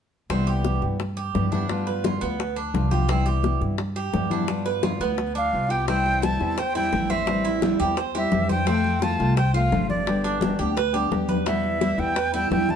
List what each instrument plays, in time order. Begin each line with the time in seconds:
0.30 upright bass C2, steel-string acoustic guitar C3 E3 G3 B3 E4, cuban tres C4, high bongo, high conga
0.47 cuban tres G4, high bongo, high conga
0.65 high bongo, high conga
0.82 upright bass G2, high bongo, high conga
1.00 muted steel-string acoustic guitar stroke, high bongo, high conga
1.17 cuban tres G4, high conga
1.34 upright bass G2, steel-string acoustic guitar E3 G3 B3 E4, high bongo, low bongo, high conga
1.52 steel-string acoustic guitar E3 G3 B3 E4, cuban tres D4, high bongo, high conga
1.68 steel-string acoustic guitar G3 B3 F4, high bongo, high conga
1.87 cuban tres B4, high bongo, high conga
2.04 cuban tres F4, high bongo, high conga
2.21 upright bass D2, cuban tres B3, high bongo, high conga
2.39 muted steel-string acoustic guitar stroke, high bongo, high conga
2.56 cuban tres D4, high conga
2.74 upright bass C2, steel-string acoustic guitar G3 B3 F4, high bongo, low bongo, high conga
2.91 steel-string acoustic guitar B3 F4, cuban tres G4, high bongo, high conga
3.08 steel-string acoustic guitar C3 E3 G3 B3 E4, cuban tres C4, high bongo, high conga
3.26 cuban tres G4, high bongo, high conga
3.43 high bongo, high conga
3.61 upright bass G2, high bongo, high conga
3.78 muted steel-string acoustic guitar stroke, high bongo, high conga
3.96 cuban tres G4, high conga
4.13 upright bass G2, steel-string acoustic guitar E3 G3 B3 E4, high bongo, low bongo, high conga
4.30 steel-string acoustic guitar E3 G3 B3 E4, cuban tres D4, high bongo, high conga
4.47 steel-string acoustic guitar G3 B3 F4, high bongo, high conga
4.66 cuban tres B4, high bongo, high conga
4.83 cuban tres F4, high bongo, high conga
5.00 upright bass D2, cuban tres B3, high bongo, high conga
5.17 muted steel-string acoustic guitar stroke, high bongo, high conga
5.35 cuban tres D4, flute F5, high conga
5.52 upright bass C2, steel-string acoustic guitar G3 B3 F4
5.69 steel-string acoustic guitar B3 F4, cuban tres G4, flute G5
5.87 steel-string acoustic guitar C3 E3 G3 C4 E4, cuban tres C4, flute G5, high bongo, high conga
6.06 high bongo, high conga
6.22 steel-string acoustic guitar E3 G3 C4 E4, cuban tres E4, flute A5, high bongo, high conga
6.39 upright bass E2, steel-string acoustic guitar E3 G3 C4 E4, high bongo, high conga
6.58 cuban tres C5, flute G5, muted steel-string acoustic guitar stroke, high bongo, high conga
6.75 steel-string acoustic guitar E3 G3 C4 E4, cuban tres E4, flute G5, high conga
6.93 upright bass A1, steel-string acoustic guitar E3 G3 C4 E4, high bongo, low bongo, high conga
7.10 cuban tres C4, flute E5, high bongo, high conga
7.27 steel-string acoustic guitar E3 G3 C4 E4, high bongo, high conga
7.44 cuban tres E4, high bongo, high conga
7.62 steel-string acoustic guitar E3 G3 C4 E4, high bongo, high conga
7.80 upright bass E2, steel-string acoustic guitar G3 C4 E4, cuban tres G4, high bongo, high conga
7.97 cuban tres C5, muted steel-string acoustic guitar stroke, high bongo, high conga
8.15 steel-string acoustic guitar G3 C4 E4, cuban tres G4, flute E5, high conga
8.32 upright bass F2, steel-string acoustic guitar E3 G3 C4 E4, high bongo, low bongo, high conga
8.49 cuban tres C5, flute G5, high bongo, high conga
8.66 steel-string acoustic guitar C3 F3 A3 C4 F4, cuban tres C4, flute G5, high bongo, high conga
8.84 high bongo, high conga
9.02 steel-string acoustic guitar F3 A3 C4 F4, cuban tres F4, flute A5, high bongo, high conga
9.19 upright bass C2, steel-string acoustic guitar F3 A3 C4 F4, high bongo, high conga
9.37 cuban tres C5, flute G5, muted steel-string acoustic guitar stroke, high bongo, high conga
9.54 steel-string acoustic guitar F3 A3 C4 F4, cuban tres F4, flute F5, high conga
9.72 upright bass G1, steel-string acoustic guitar F3 A3 C4 F4, high bongo, low bongo, high conga
9.90 flute D5, high bongo, high conga
10.06 steel-string acoustic guitar D3 G3 B3 D4 G4, high bongo, high conga
10.24 cuban tres D4, high bongo, high conga
10.41 steel-string acoustic guitar G3 B3 D4 G4, high bongo, high conga
10.59 upright bass D2, steel-string acoustic guitar G3 B3 D4 G4, cuban tres G4, high bongo, high conga
10.77 cuban tres B4, muted steel-string acoustic guitar stroke, high bongo, high conga
10.93 steel-string acoustic guitar G3 B3 D4 G4, cuban tres G4, high conga
11.11 upright bass E2, steel-string acoustic guitar G3 B3 D4 G4, high bongo, low bongo, high conga
11.29 cuban tres B4, high bongo, high conga
11.46 steel-string acoustic guitar B2 E3 G3 B3 E4, cuban tres B3, flute E5, high bongo, high conga
11.64 high bongo, high conga
11.80 steel-string acoustic guitar E3 G3 B3 E4, cuban tres E4, high bongo, high conga
11.98 upright bass E2, steel-string acoustic guitar E3 G3 B3 E4, flute G5, high bongo, high conga
12.16 cuban tres B4, muted steel-string acoustic guitar stroke, high bongo, high conga
12.33 steel-string acoustic guitar E3 G3 B3 E4, cuban tres E4, flute G5, high conga
12.50 upright bass F2, steel-string acoustic guitar E3 G3 B3 E4, flute G5, high bongo, low bongo, high conga
12.69 flute A5, high bongo, high conga